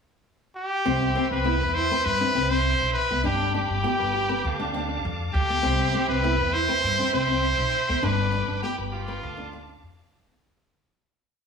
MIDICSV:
0, 0, Header, 1, 8, 480
1, 0, Start_track
1, 0, Key_signature, 0, "major"
1, 0, Tempo, 597610
1, 686, Time_signature, 4, 2, 24, 8
1, 9209, End_track
2, 0, Start_track
2, 0, Title_t, "Tonewheel organ"
2, 0, Program_c, 0, 16
2, 698, Note_on_c, 0, 79, 73
2, 701, Note_on_c, 0, 76, 65
2, 701, Note_on_c, 0, 83, 62
2, 2596, Note_off_c, 0, 79, 0
2, 2597, Note_off_c, 0, 76, 0
2, 2609, Note_on_c, 0, 86, 73
2, 2615, Note_on_c, 0, 79, 66
2, 3548, Note_off_c, 0, 83, 0
2, 3562, Note_off_c, 0, 79, 0
2, 3584, Note_on_c, 0, 81, 55
2, 3585, Note_on_c, 0, 77, 64
2, 4509, Note_off_c, 0, 86, 0
2, 4526, Note_on_c, 0, 76, 66
2, 4527, Note_off_c, 0, 77, 0
2, 4527, Note_off_c, 0, 81, 0
2, 4527, Note_on_c, 0, 79, 76
2, 4527, Note_on_c, 0, 83, 61
2, 6426, Note_off_c, 0, 76, 0
2, 6427, Note_off_c, 0, 79, 0
2, 6439, Note_on_c, 0, 79, 63
2, 6451, Note_on_c, 0, 86, 80
2, 7376, Note_off_c, 0, 83, 0
2, 7392, Note_off_c, 0, 79, 0
2, 7417, Note_on_c, 0, 77, 69
2, 7418, Note_on_c, 0, 81, 59
2, 8349, Note_off_c, 0, 86, 0
2, 8362, Note_off_c, 0, 77, 0
2, 8362, Note_off_c, 0, 81, 0
2, 9209, End_track
3, 0, Start_track
3, 0, Title_t, "Trumpet"
3, 0, Program_c, 1, 56
3, 451, Note_on_c, 1, 67, 89
3, 1023, Note_off_c, 1, 67, 0
3, 1050, Note_on_c, 1, 71, 94
3, 1400, Note_on_c, 1, 72, 109
3, 1412, Note_off_c, 1, 71, 0
3, 1647, Note_on_c, 1, 71, 108
3, 1659, Note_off_c, 1, 72, 0
3, 2005, Note_on_c, 1, 72, 98
3, 2017, Note_off_c, 1, 71, 0
3, 2350, Note_off_c, 1, 72, 0
3, 2355, Note_on_c, 1, 71, 90
3, 2585, Note_off_c, 1, 71, 0
3, 2609, Note_on_c, 1, 67, 89
3, 2832, Note_off_c, 1, 67, 0
3, 2849, Note_on_c, 1, 67, 88
3, 4041, Note_off_c, 1, 67, 0
3, 4286, Note_on_c, 1, 67, 108
3, 4860, Note_off_c, 1, 67, 0
3, 4890, Note_on_c, 1, 71, 99
3, 5245, Note_on_c, 1, 72, 121
3, 5257, Note_off_c, 1, 71, 0
3, 5726, Note_off_c, 1, 72, 0
3, 5735, Note_on_c, 1, 72, 101
3, 6458, Note_on_c, 1, 71, 94
3, 6470, Note_off_c, 1, 72, 0
3, 6928, Note_off_c, 1, 71, 0
3, 6933, Note_on_c, 1, 67, 82
3, 7039, Note_off_c, 1, 67, 0
3, 7170, Note_on_c, 1, 65, 84
3, 7856, Note_off_c, 1, 65, 0
3, 9209, End_track
4, 0, Start_track
4, 0, Title_t, "Clean electric guitar"
4, 0, Program_c, 2, 27
4, 688, Note_on_c, 2, 60, 88
4, 760, Note_off_c, 2, 60, 0
4, 810, Note_on_c, 2, 60, 72
4, 877, Note_off_c, 2, 60, 0
4, 931, Note_on_c, 2, 60, 70
4, 1003, Note_off_c, 2, 60, 0
4, 1052, Note_on_c, 2, 60, 66
4, 1119, Note_off_c, 2, 60, 0
4, 1168, Note_on_c, 2, 64, 83
4, 1241, Note_off_c, 2, 64, 0
4, 1286, Note_on_c, 2, 71, 73
4, 1355, Note_off_c, 2, 71, 0
4, 1405, Note_on_c, 2, 64, 78
4, 1478, Note_off_c, 2, 64, 0
4, 1536, Note_on_c, 2, 71, 72
4, 1602, Note_off_c, 2, 71, 0
4, 1773, Note_on_c, 2, 60, 60
4, 1840, Note_off_c, 2, 60, 0
4, 1887, Note_on_c, 2, 60, 68
4, 1960, Note_off_c, 2, 60, 0
4, 2011, Note_on_c, 2, 60, 75
4, 2079, Note_off_c, 2, 60, 0
4, 2607, Note_on_c, 2, 62, 93
4, 2680, Note_off_c, 2, 62, 0
4, 2730, Note_on_c, 2, 62, 73
4, 2798, Note_off_c, 2, 62, 0
4, 2846, Note_on_c, 2, 62, 69
4, 2920, Note_off_c, 2, 62, 0
4, 3081, Note_on_c, 2, 67, 92
4, 3156, Note_off_c, 2, 67, 0
4, 3206, Note_on_c, 2, 71, 72
4, 3275, Note_off_c, 2, 71, 0
4, 3321, Note_on_c, 2, 67, 74
4, 3396, Note_off_c, 2, 67, 0
4, 3446, Note_on_c, 2, 71, 75
4, 3515, Note_off_c, 2, 71, 0
4, 3690, Note_on_c, 2, 62, 65
4, 3758, Note_off_c, 2, 62, 0
4, 3802, Note_on_c, 2, 62, 67
4, 3877, Note_off_c, 2, 62, 0
4, 3927, Note_on_c, 2, 62, 75
4, 3996, Note_off_c, 2, 62, 0
4, 4521, Note_on_c, 2, 60, 88
4, 4596, Note_off_c, 2, 60, 0
4, 4644, Note_on_c, 2, 60, 73
4, 4714, Note_off_c, 2, 60, 0
4, 4759, Note_on_c, 2, 60, 73
4, 4835, Note_off_c, 2, 60, 0
4, 4882, Note_on_c, 2, 60, 74
4, 4952, Note_off_c, 2, 60, 0
4, 5003, Note_on_c, 2, 64, 83
4, 5077, Note_off_c, 2, 64, 0
4, 5125, Note_on_c, 2, 71, 74
4, 5194, Note_off_c, 2, 71, 0
4, 5245, Note_on_c, 2, 64, 77
4, 5318, Note_off_c, 2, 64, 0
4, 5369, Note_on_c, 2, 71, 82
4, 5437, Note_off_c, 2, 71, 0
4, 5610, Note_on_c, 2, 60, 63
4, 5677, Note_off_c, 2, 60, 0
4, 5725, Note_on_c, 2, 60, 67
4, 5798, Note_off_c, 2, 60, 0
4, 5851, Note_on_c, 2, 60, 72
4, 5918, Note_off_c, 2, 60, 0
4, 6446, Note_on_c, 2, 62, 92
4, 6519, Note_off_c, 2, 62, 0
4, 6571, Note_on_c, 2, 62, 75
4, 6638, Note_off_c, 2, 62, 0
4, 6811, Note_on_c, 2, 62, 64
4, 6878, Note_off_c, 2, 62, 0
4, 6928, Note_on_c, 2, 67, 83
4, 7000, Note_off_c, 2, 67, 0
4, 7053, Note_on_c, 2, 71, 72
4, 7119, Note_off_c, 2, 71, 0
4, 7168, Note_on_c, 2, 67, 69
4, 7240, Note_off_c, 2, 67, 0
4, 7296, Note_on_c, 2, 71, 72
4, 7361, Note_off_c, 2, 71, 0
4, 7534, Note_on_c, 2, 62, 64
4, 7600, Note_off_c, 2, 62, 0
4, 7651, Note_on_c, 2, 62, 61
4, 7722, Note_off_c, 2, 62, 0
4, 7782, Note_on_c, 2, 62, 70
4, 7845, Note_off_c, 2, 62, 0
4, 9209, End_track
5, 0, Start_track
5, 0, Title_t, "Nylon-string guitar"
5, 0, Program_c, 3, 24
5, 688, Note_on_c, 3, 60, 86
5, 861, Note_off_c, 3, 60, 0
5, 927, Note_on_c, 3, 60, 72
5, 1101, Note_off_c, 3, 60, 0
5, 1160, Note_on_c, 3, 59, 77
5, 1337, Note_off_c, 3, 59, 0
5, 1536, Note_on_c, 3, 60, 78
5, 1709, Note_off_c, 3, 60, 0
5, 1773, Note_on_c, 3, 62, 70
5, 1857, Note_off_c, 3, 62, 0
5, 1890, Note_on_c, 3, 60, 73
5, 2064, Note_off_c, 3, 60, 0
5, 2497, Note_on_c, 3, 59, 69
5, 2579, Note_off_c, 3, 59, 0
5, 2599, Note_on_c, 3, 62, 80
5, 2777, Note_off_c, 3, 62, 0
5, 2847, Note_on_c, 3, 62, 74
5, 3022, Note_off_c, 3, 62, 0
5, 3085, Note_on_c, 3, 59, 84
5, 3260, Note_off_c, 3, 59, 0
5, 3449, Note_on_c, 3, 60, 74
5, 3625, Note_off_c, 3, 60, 0
5, 3691, Note_on_c, 3, 62, 67
5, 3775, Note_off_c, 3, 62, 0
5, 3809, Note_on_c, 3, 60, 74
5, 3983, Note_off_c, 3, 60, 0
5, 4418, Note_on_c, 3, 59, 65
5, 4500, Note_off_c, 3, 59, 0
5, 4521, Note_on_c, 3, 60, 90
5, 4698, Note_off_c, 3, 60, 0
5, 4776, Note_on_c, 3, 60, 72
5, 4947, Note_off_c, 3, 60, 0
5, 5012, Note_on_c, 3, 59, 87
5, 5184, Note_off_c, 3, 59, 0
5, 5372, Note_on_c, 3, 60, 71
5, 5546, Note_off_c, 3, 60, 0
5, 5617, Note_on_c, 3, 62, 68
5, 5699, Note_off_c, 3, 62, 0
5, 5734, Note_on_c, 3, 60, 76
5, 5906, Note_off_c, 3, 60, 0
5, 6338, Note_on_c, 3, 59, 66
5, 6419, Note_off_c, 3, 59, 0
5, 6449, Note_on_c, 3, 62, 94
5, 6622, Note_off_c, 3, 62, 0
5, 6683, Note_on_c, 3, 62, 79
5, 6858, Note_off_c, 3, 62, 0
5, 6933, Note_on_c, 3, 59, 82
5, 7104, Note_off_c, 3, 59, 0
5, 7293, Note_on_c, 3, 60, 75
5, 7467, Note_off_c, 3, 60, 0
5, 7529, Note_on_c, 3, 62, 66
5, 7613, Note_off_c, 3, 62, 0
5, 8263, Note_on_c, 3, 59, 68
5, 8342, Note_off_c, 3, 59, 0
5, 9209, End_track
6, 0, Start_track
6, 0, Title_t, "Upright bass"
6, 0, Program_c, 4, 32
6, 690, Note_on_c, 4, 36, 100
6, 902, Note_off_c, 4, 36, 0
6, 1056, Note_on_c, 4, 36, 82
6, 1268, Note_off_c, 4, 36, 0
6, 1299, Note_on_c, 4, 40, 75
6, 1510, Note_off_c, 4, 40, 0
6, 1651, Note_on_c, 4, 43, 97
6, 1761, Note_off_c, 4, 43, 0
6, 1888, Note_on_c, 4, 36, 89
6, 2214, Note_off_c, 4, 36, 0
6, 2256, Note_on_c, 4, 35, 73
6, 2357, Note_off_c, 4, 35, 0
6, 2496, Note_on_c, 4, 36, 78
6, 2597, Note_off_c, 4, 36, 0
6, 2614, Note_on_c, 4, 31, 89
6, 2937, Note_off_c, 4, 31, 0
6, 2974, Note_on_c, 4, 31, 77
6, 3076, Note_off_c, 4, 31, 0
6, 3216, Note_on_c, 4, 31, 80
6, 3531, Note_off_c, 4, 31, 0
6, 3571, Note_on_c, 4, 38, 102
6, 3997, Note_off_c, 4, 38, 0
6, 4055, Note_on_c, 4, 41, 96
6, 4266, Note_off_c, 4, 41, 0
6, 4291, Note_on_c, 4, 38, 107
6, 4503, Note_off_c, 4, 38, 0
6, 4531, Note_on_c, 4, 36, 98
6, 4743, Note_off_c, 4, 36, 0
6, 4891, Note_on_c, 4, 36, 86
6, 5106, Note_off_c, 4, 36, 0
6, 5130, Note_on_c, 4, 40, 80
6, 5345, Note_off_c, 4, 40, 0
6, 5490, Note_on_c, 4, 43, 94
6, 5600, Note_off_c, 4, 43, 0
6, 5728, Note_on_c, 4, 36, 90
6, 6052, Note_off_c, 4, 36, 0
6, 6089, Note_on_c, 4, 35, 85
6, 6193, Note_off_c, 4, 35, 0
6, 6337, Note_on_c, 4, 38, 78
6, 6437, Note_off_c, 4, 38, 0
6, 6453, Note_on_c, 4, 31, 106
6, 6775, Note_off_c, 4, 31, 0
6, 6817, Note_on_c, 4, 31, 79
6, 6917, Note_off_c, 4, 31, 0
6, 7056, Note_on_c, 4, 31, 81
6, 7369, Note_off_c, 4, 31, 0
6, 7414, Note_on_c, 4, 38, 104
6, 7837, Note_off_c, 4, 38, 0
6, 7895, Note_on_c, 4, 41, 87
6, 8105, Note_off_c, 4, 41, 0
6, 8130, Note_on_c, 4, 38, 98
6, 8342, Note_off_c, 4, 38, 0
6, 9209, End_track
7, 0, Start_track
7, 0, Title_t, "Muted clean electric guitar strokes"
7, 6687, Note_on_c, 9, 29, 74
7, 6768, Note_off_c, 9, 29, 0
7, 9209, End_track
8, 0, Start_track
8, 0, Title_t, "Muted nylon-string guitar strokes"
8, 7655, Note_on_c, 9, 29, 73
8, 7735, Note_off_c, 9, 29, 0
8, 9209, End_track
0, 0, End_of_file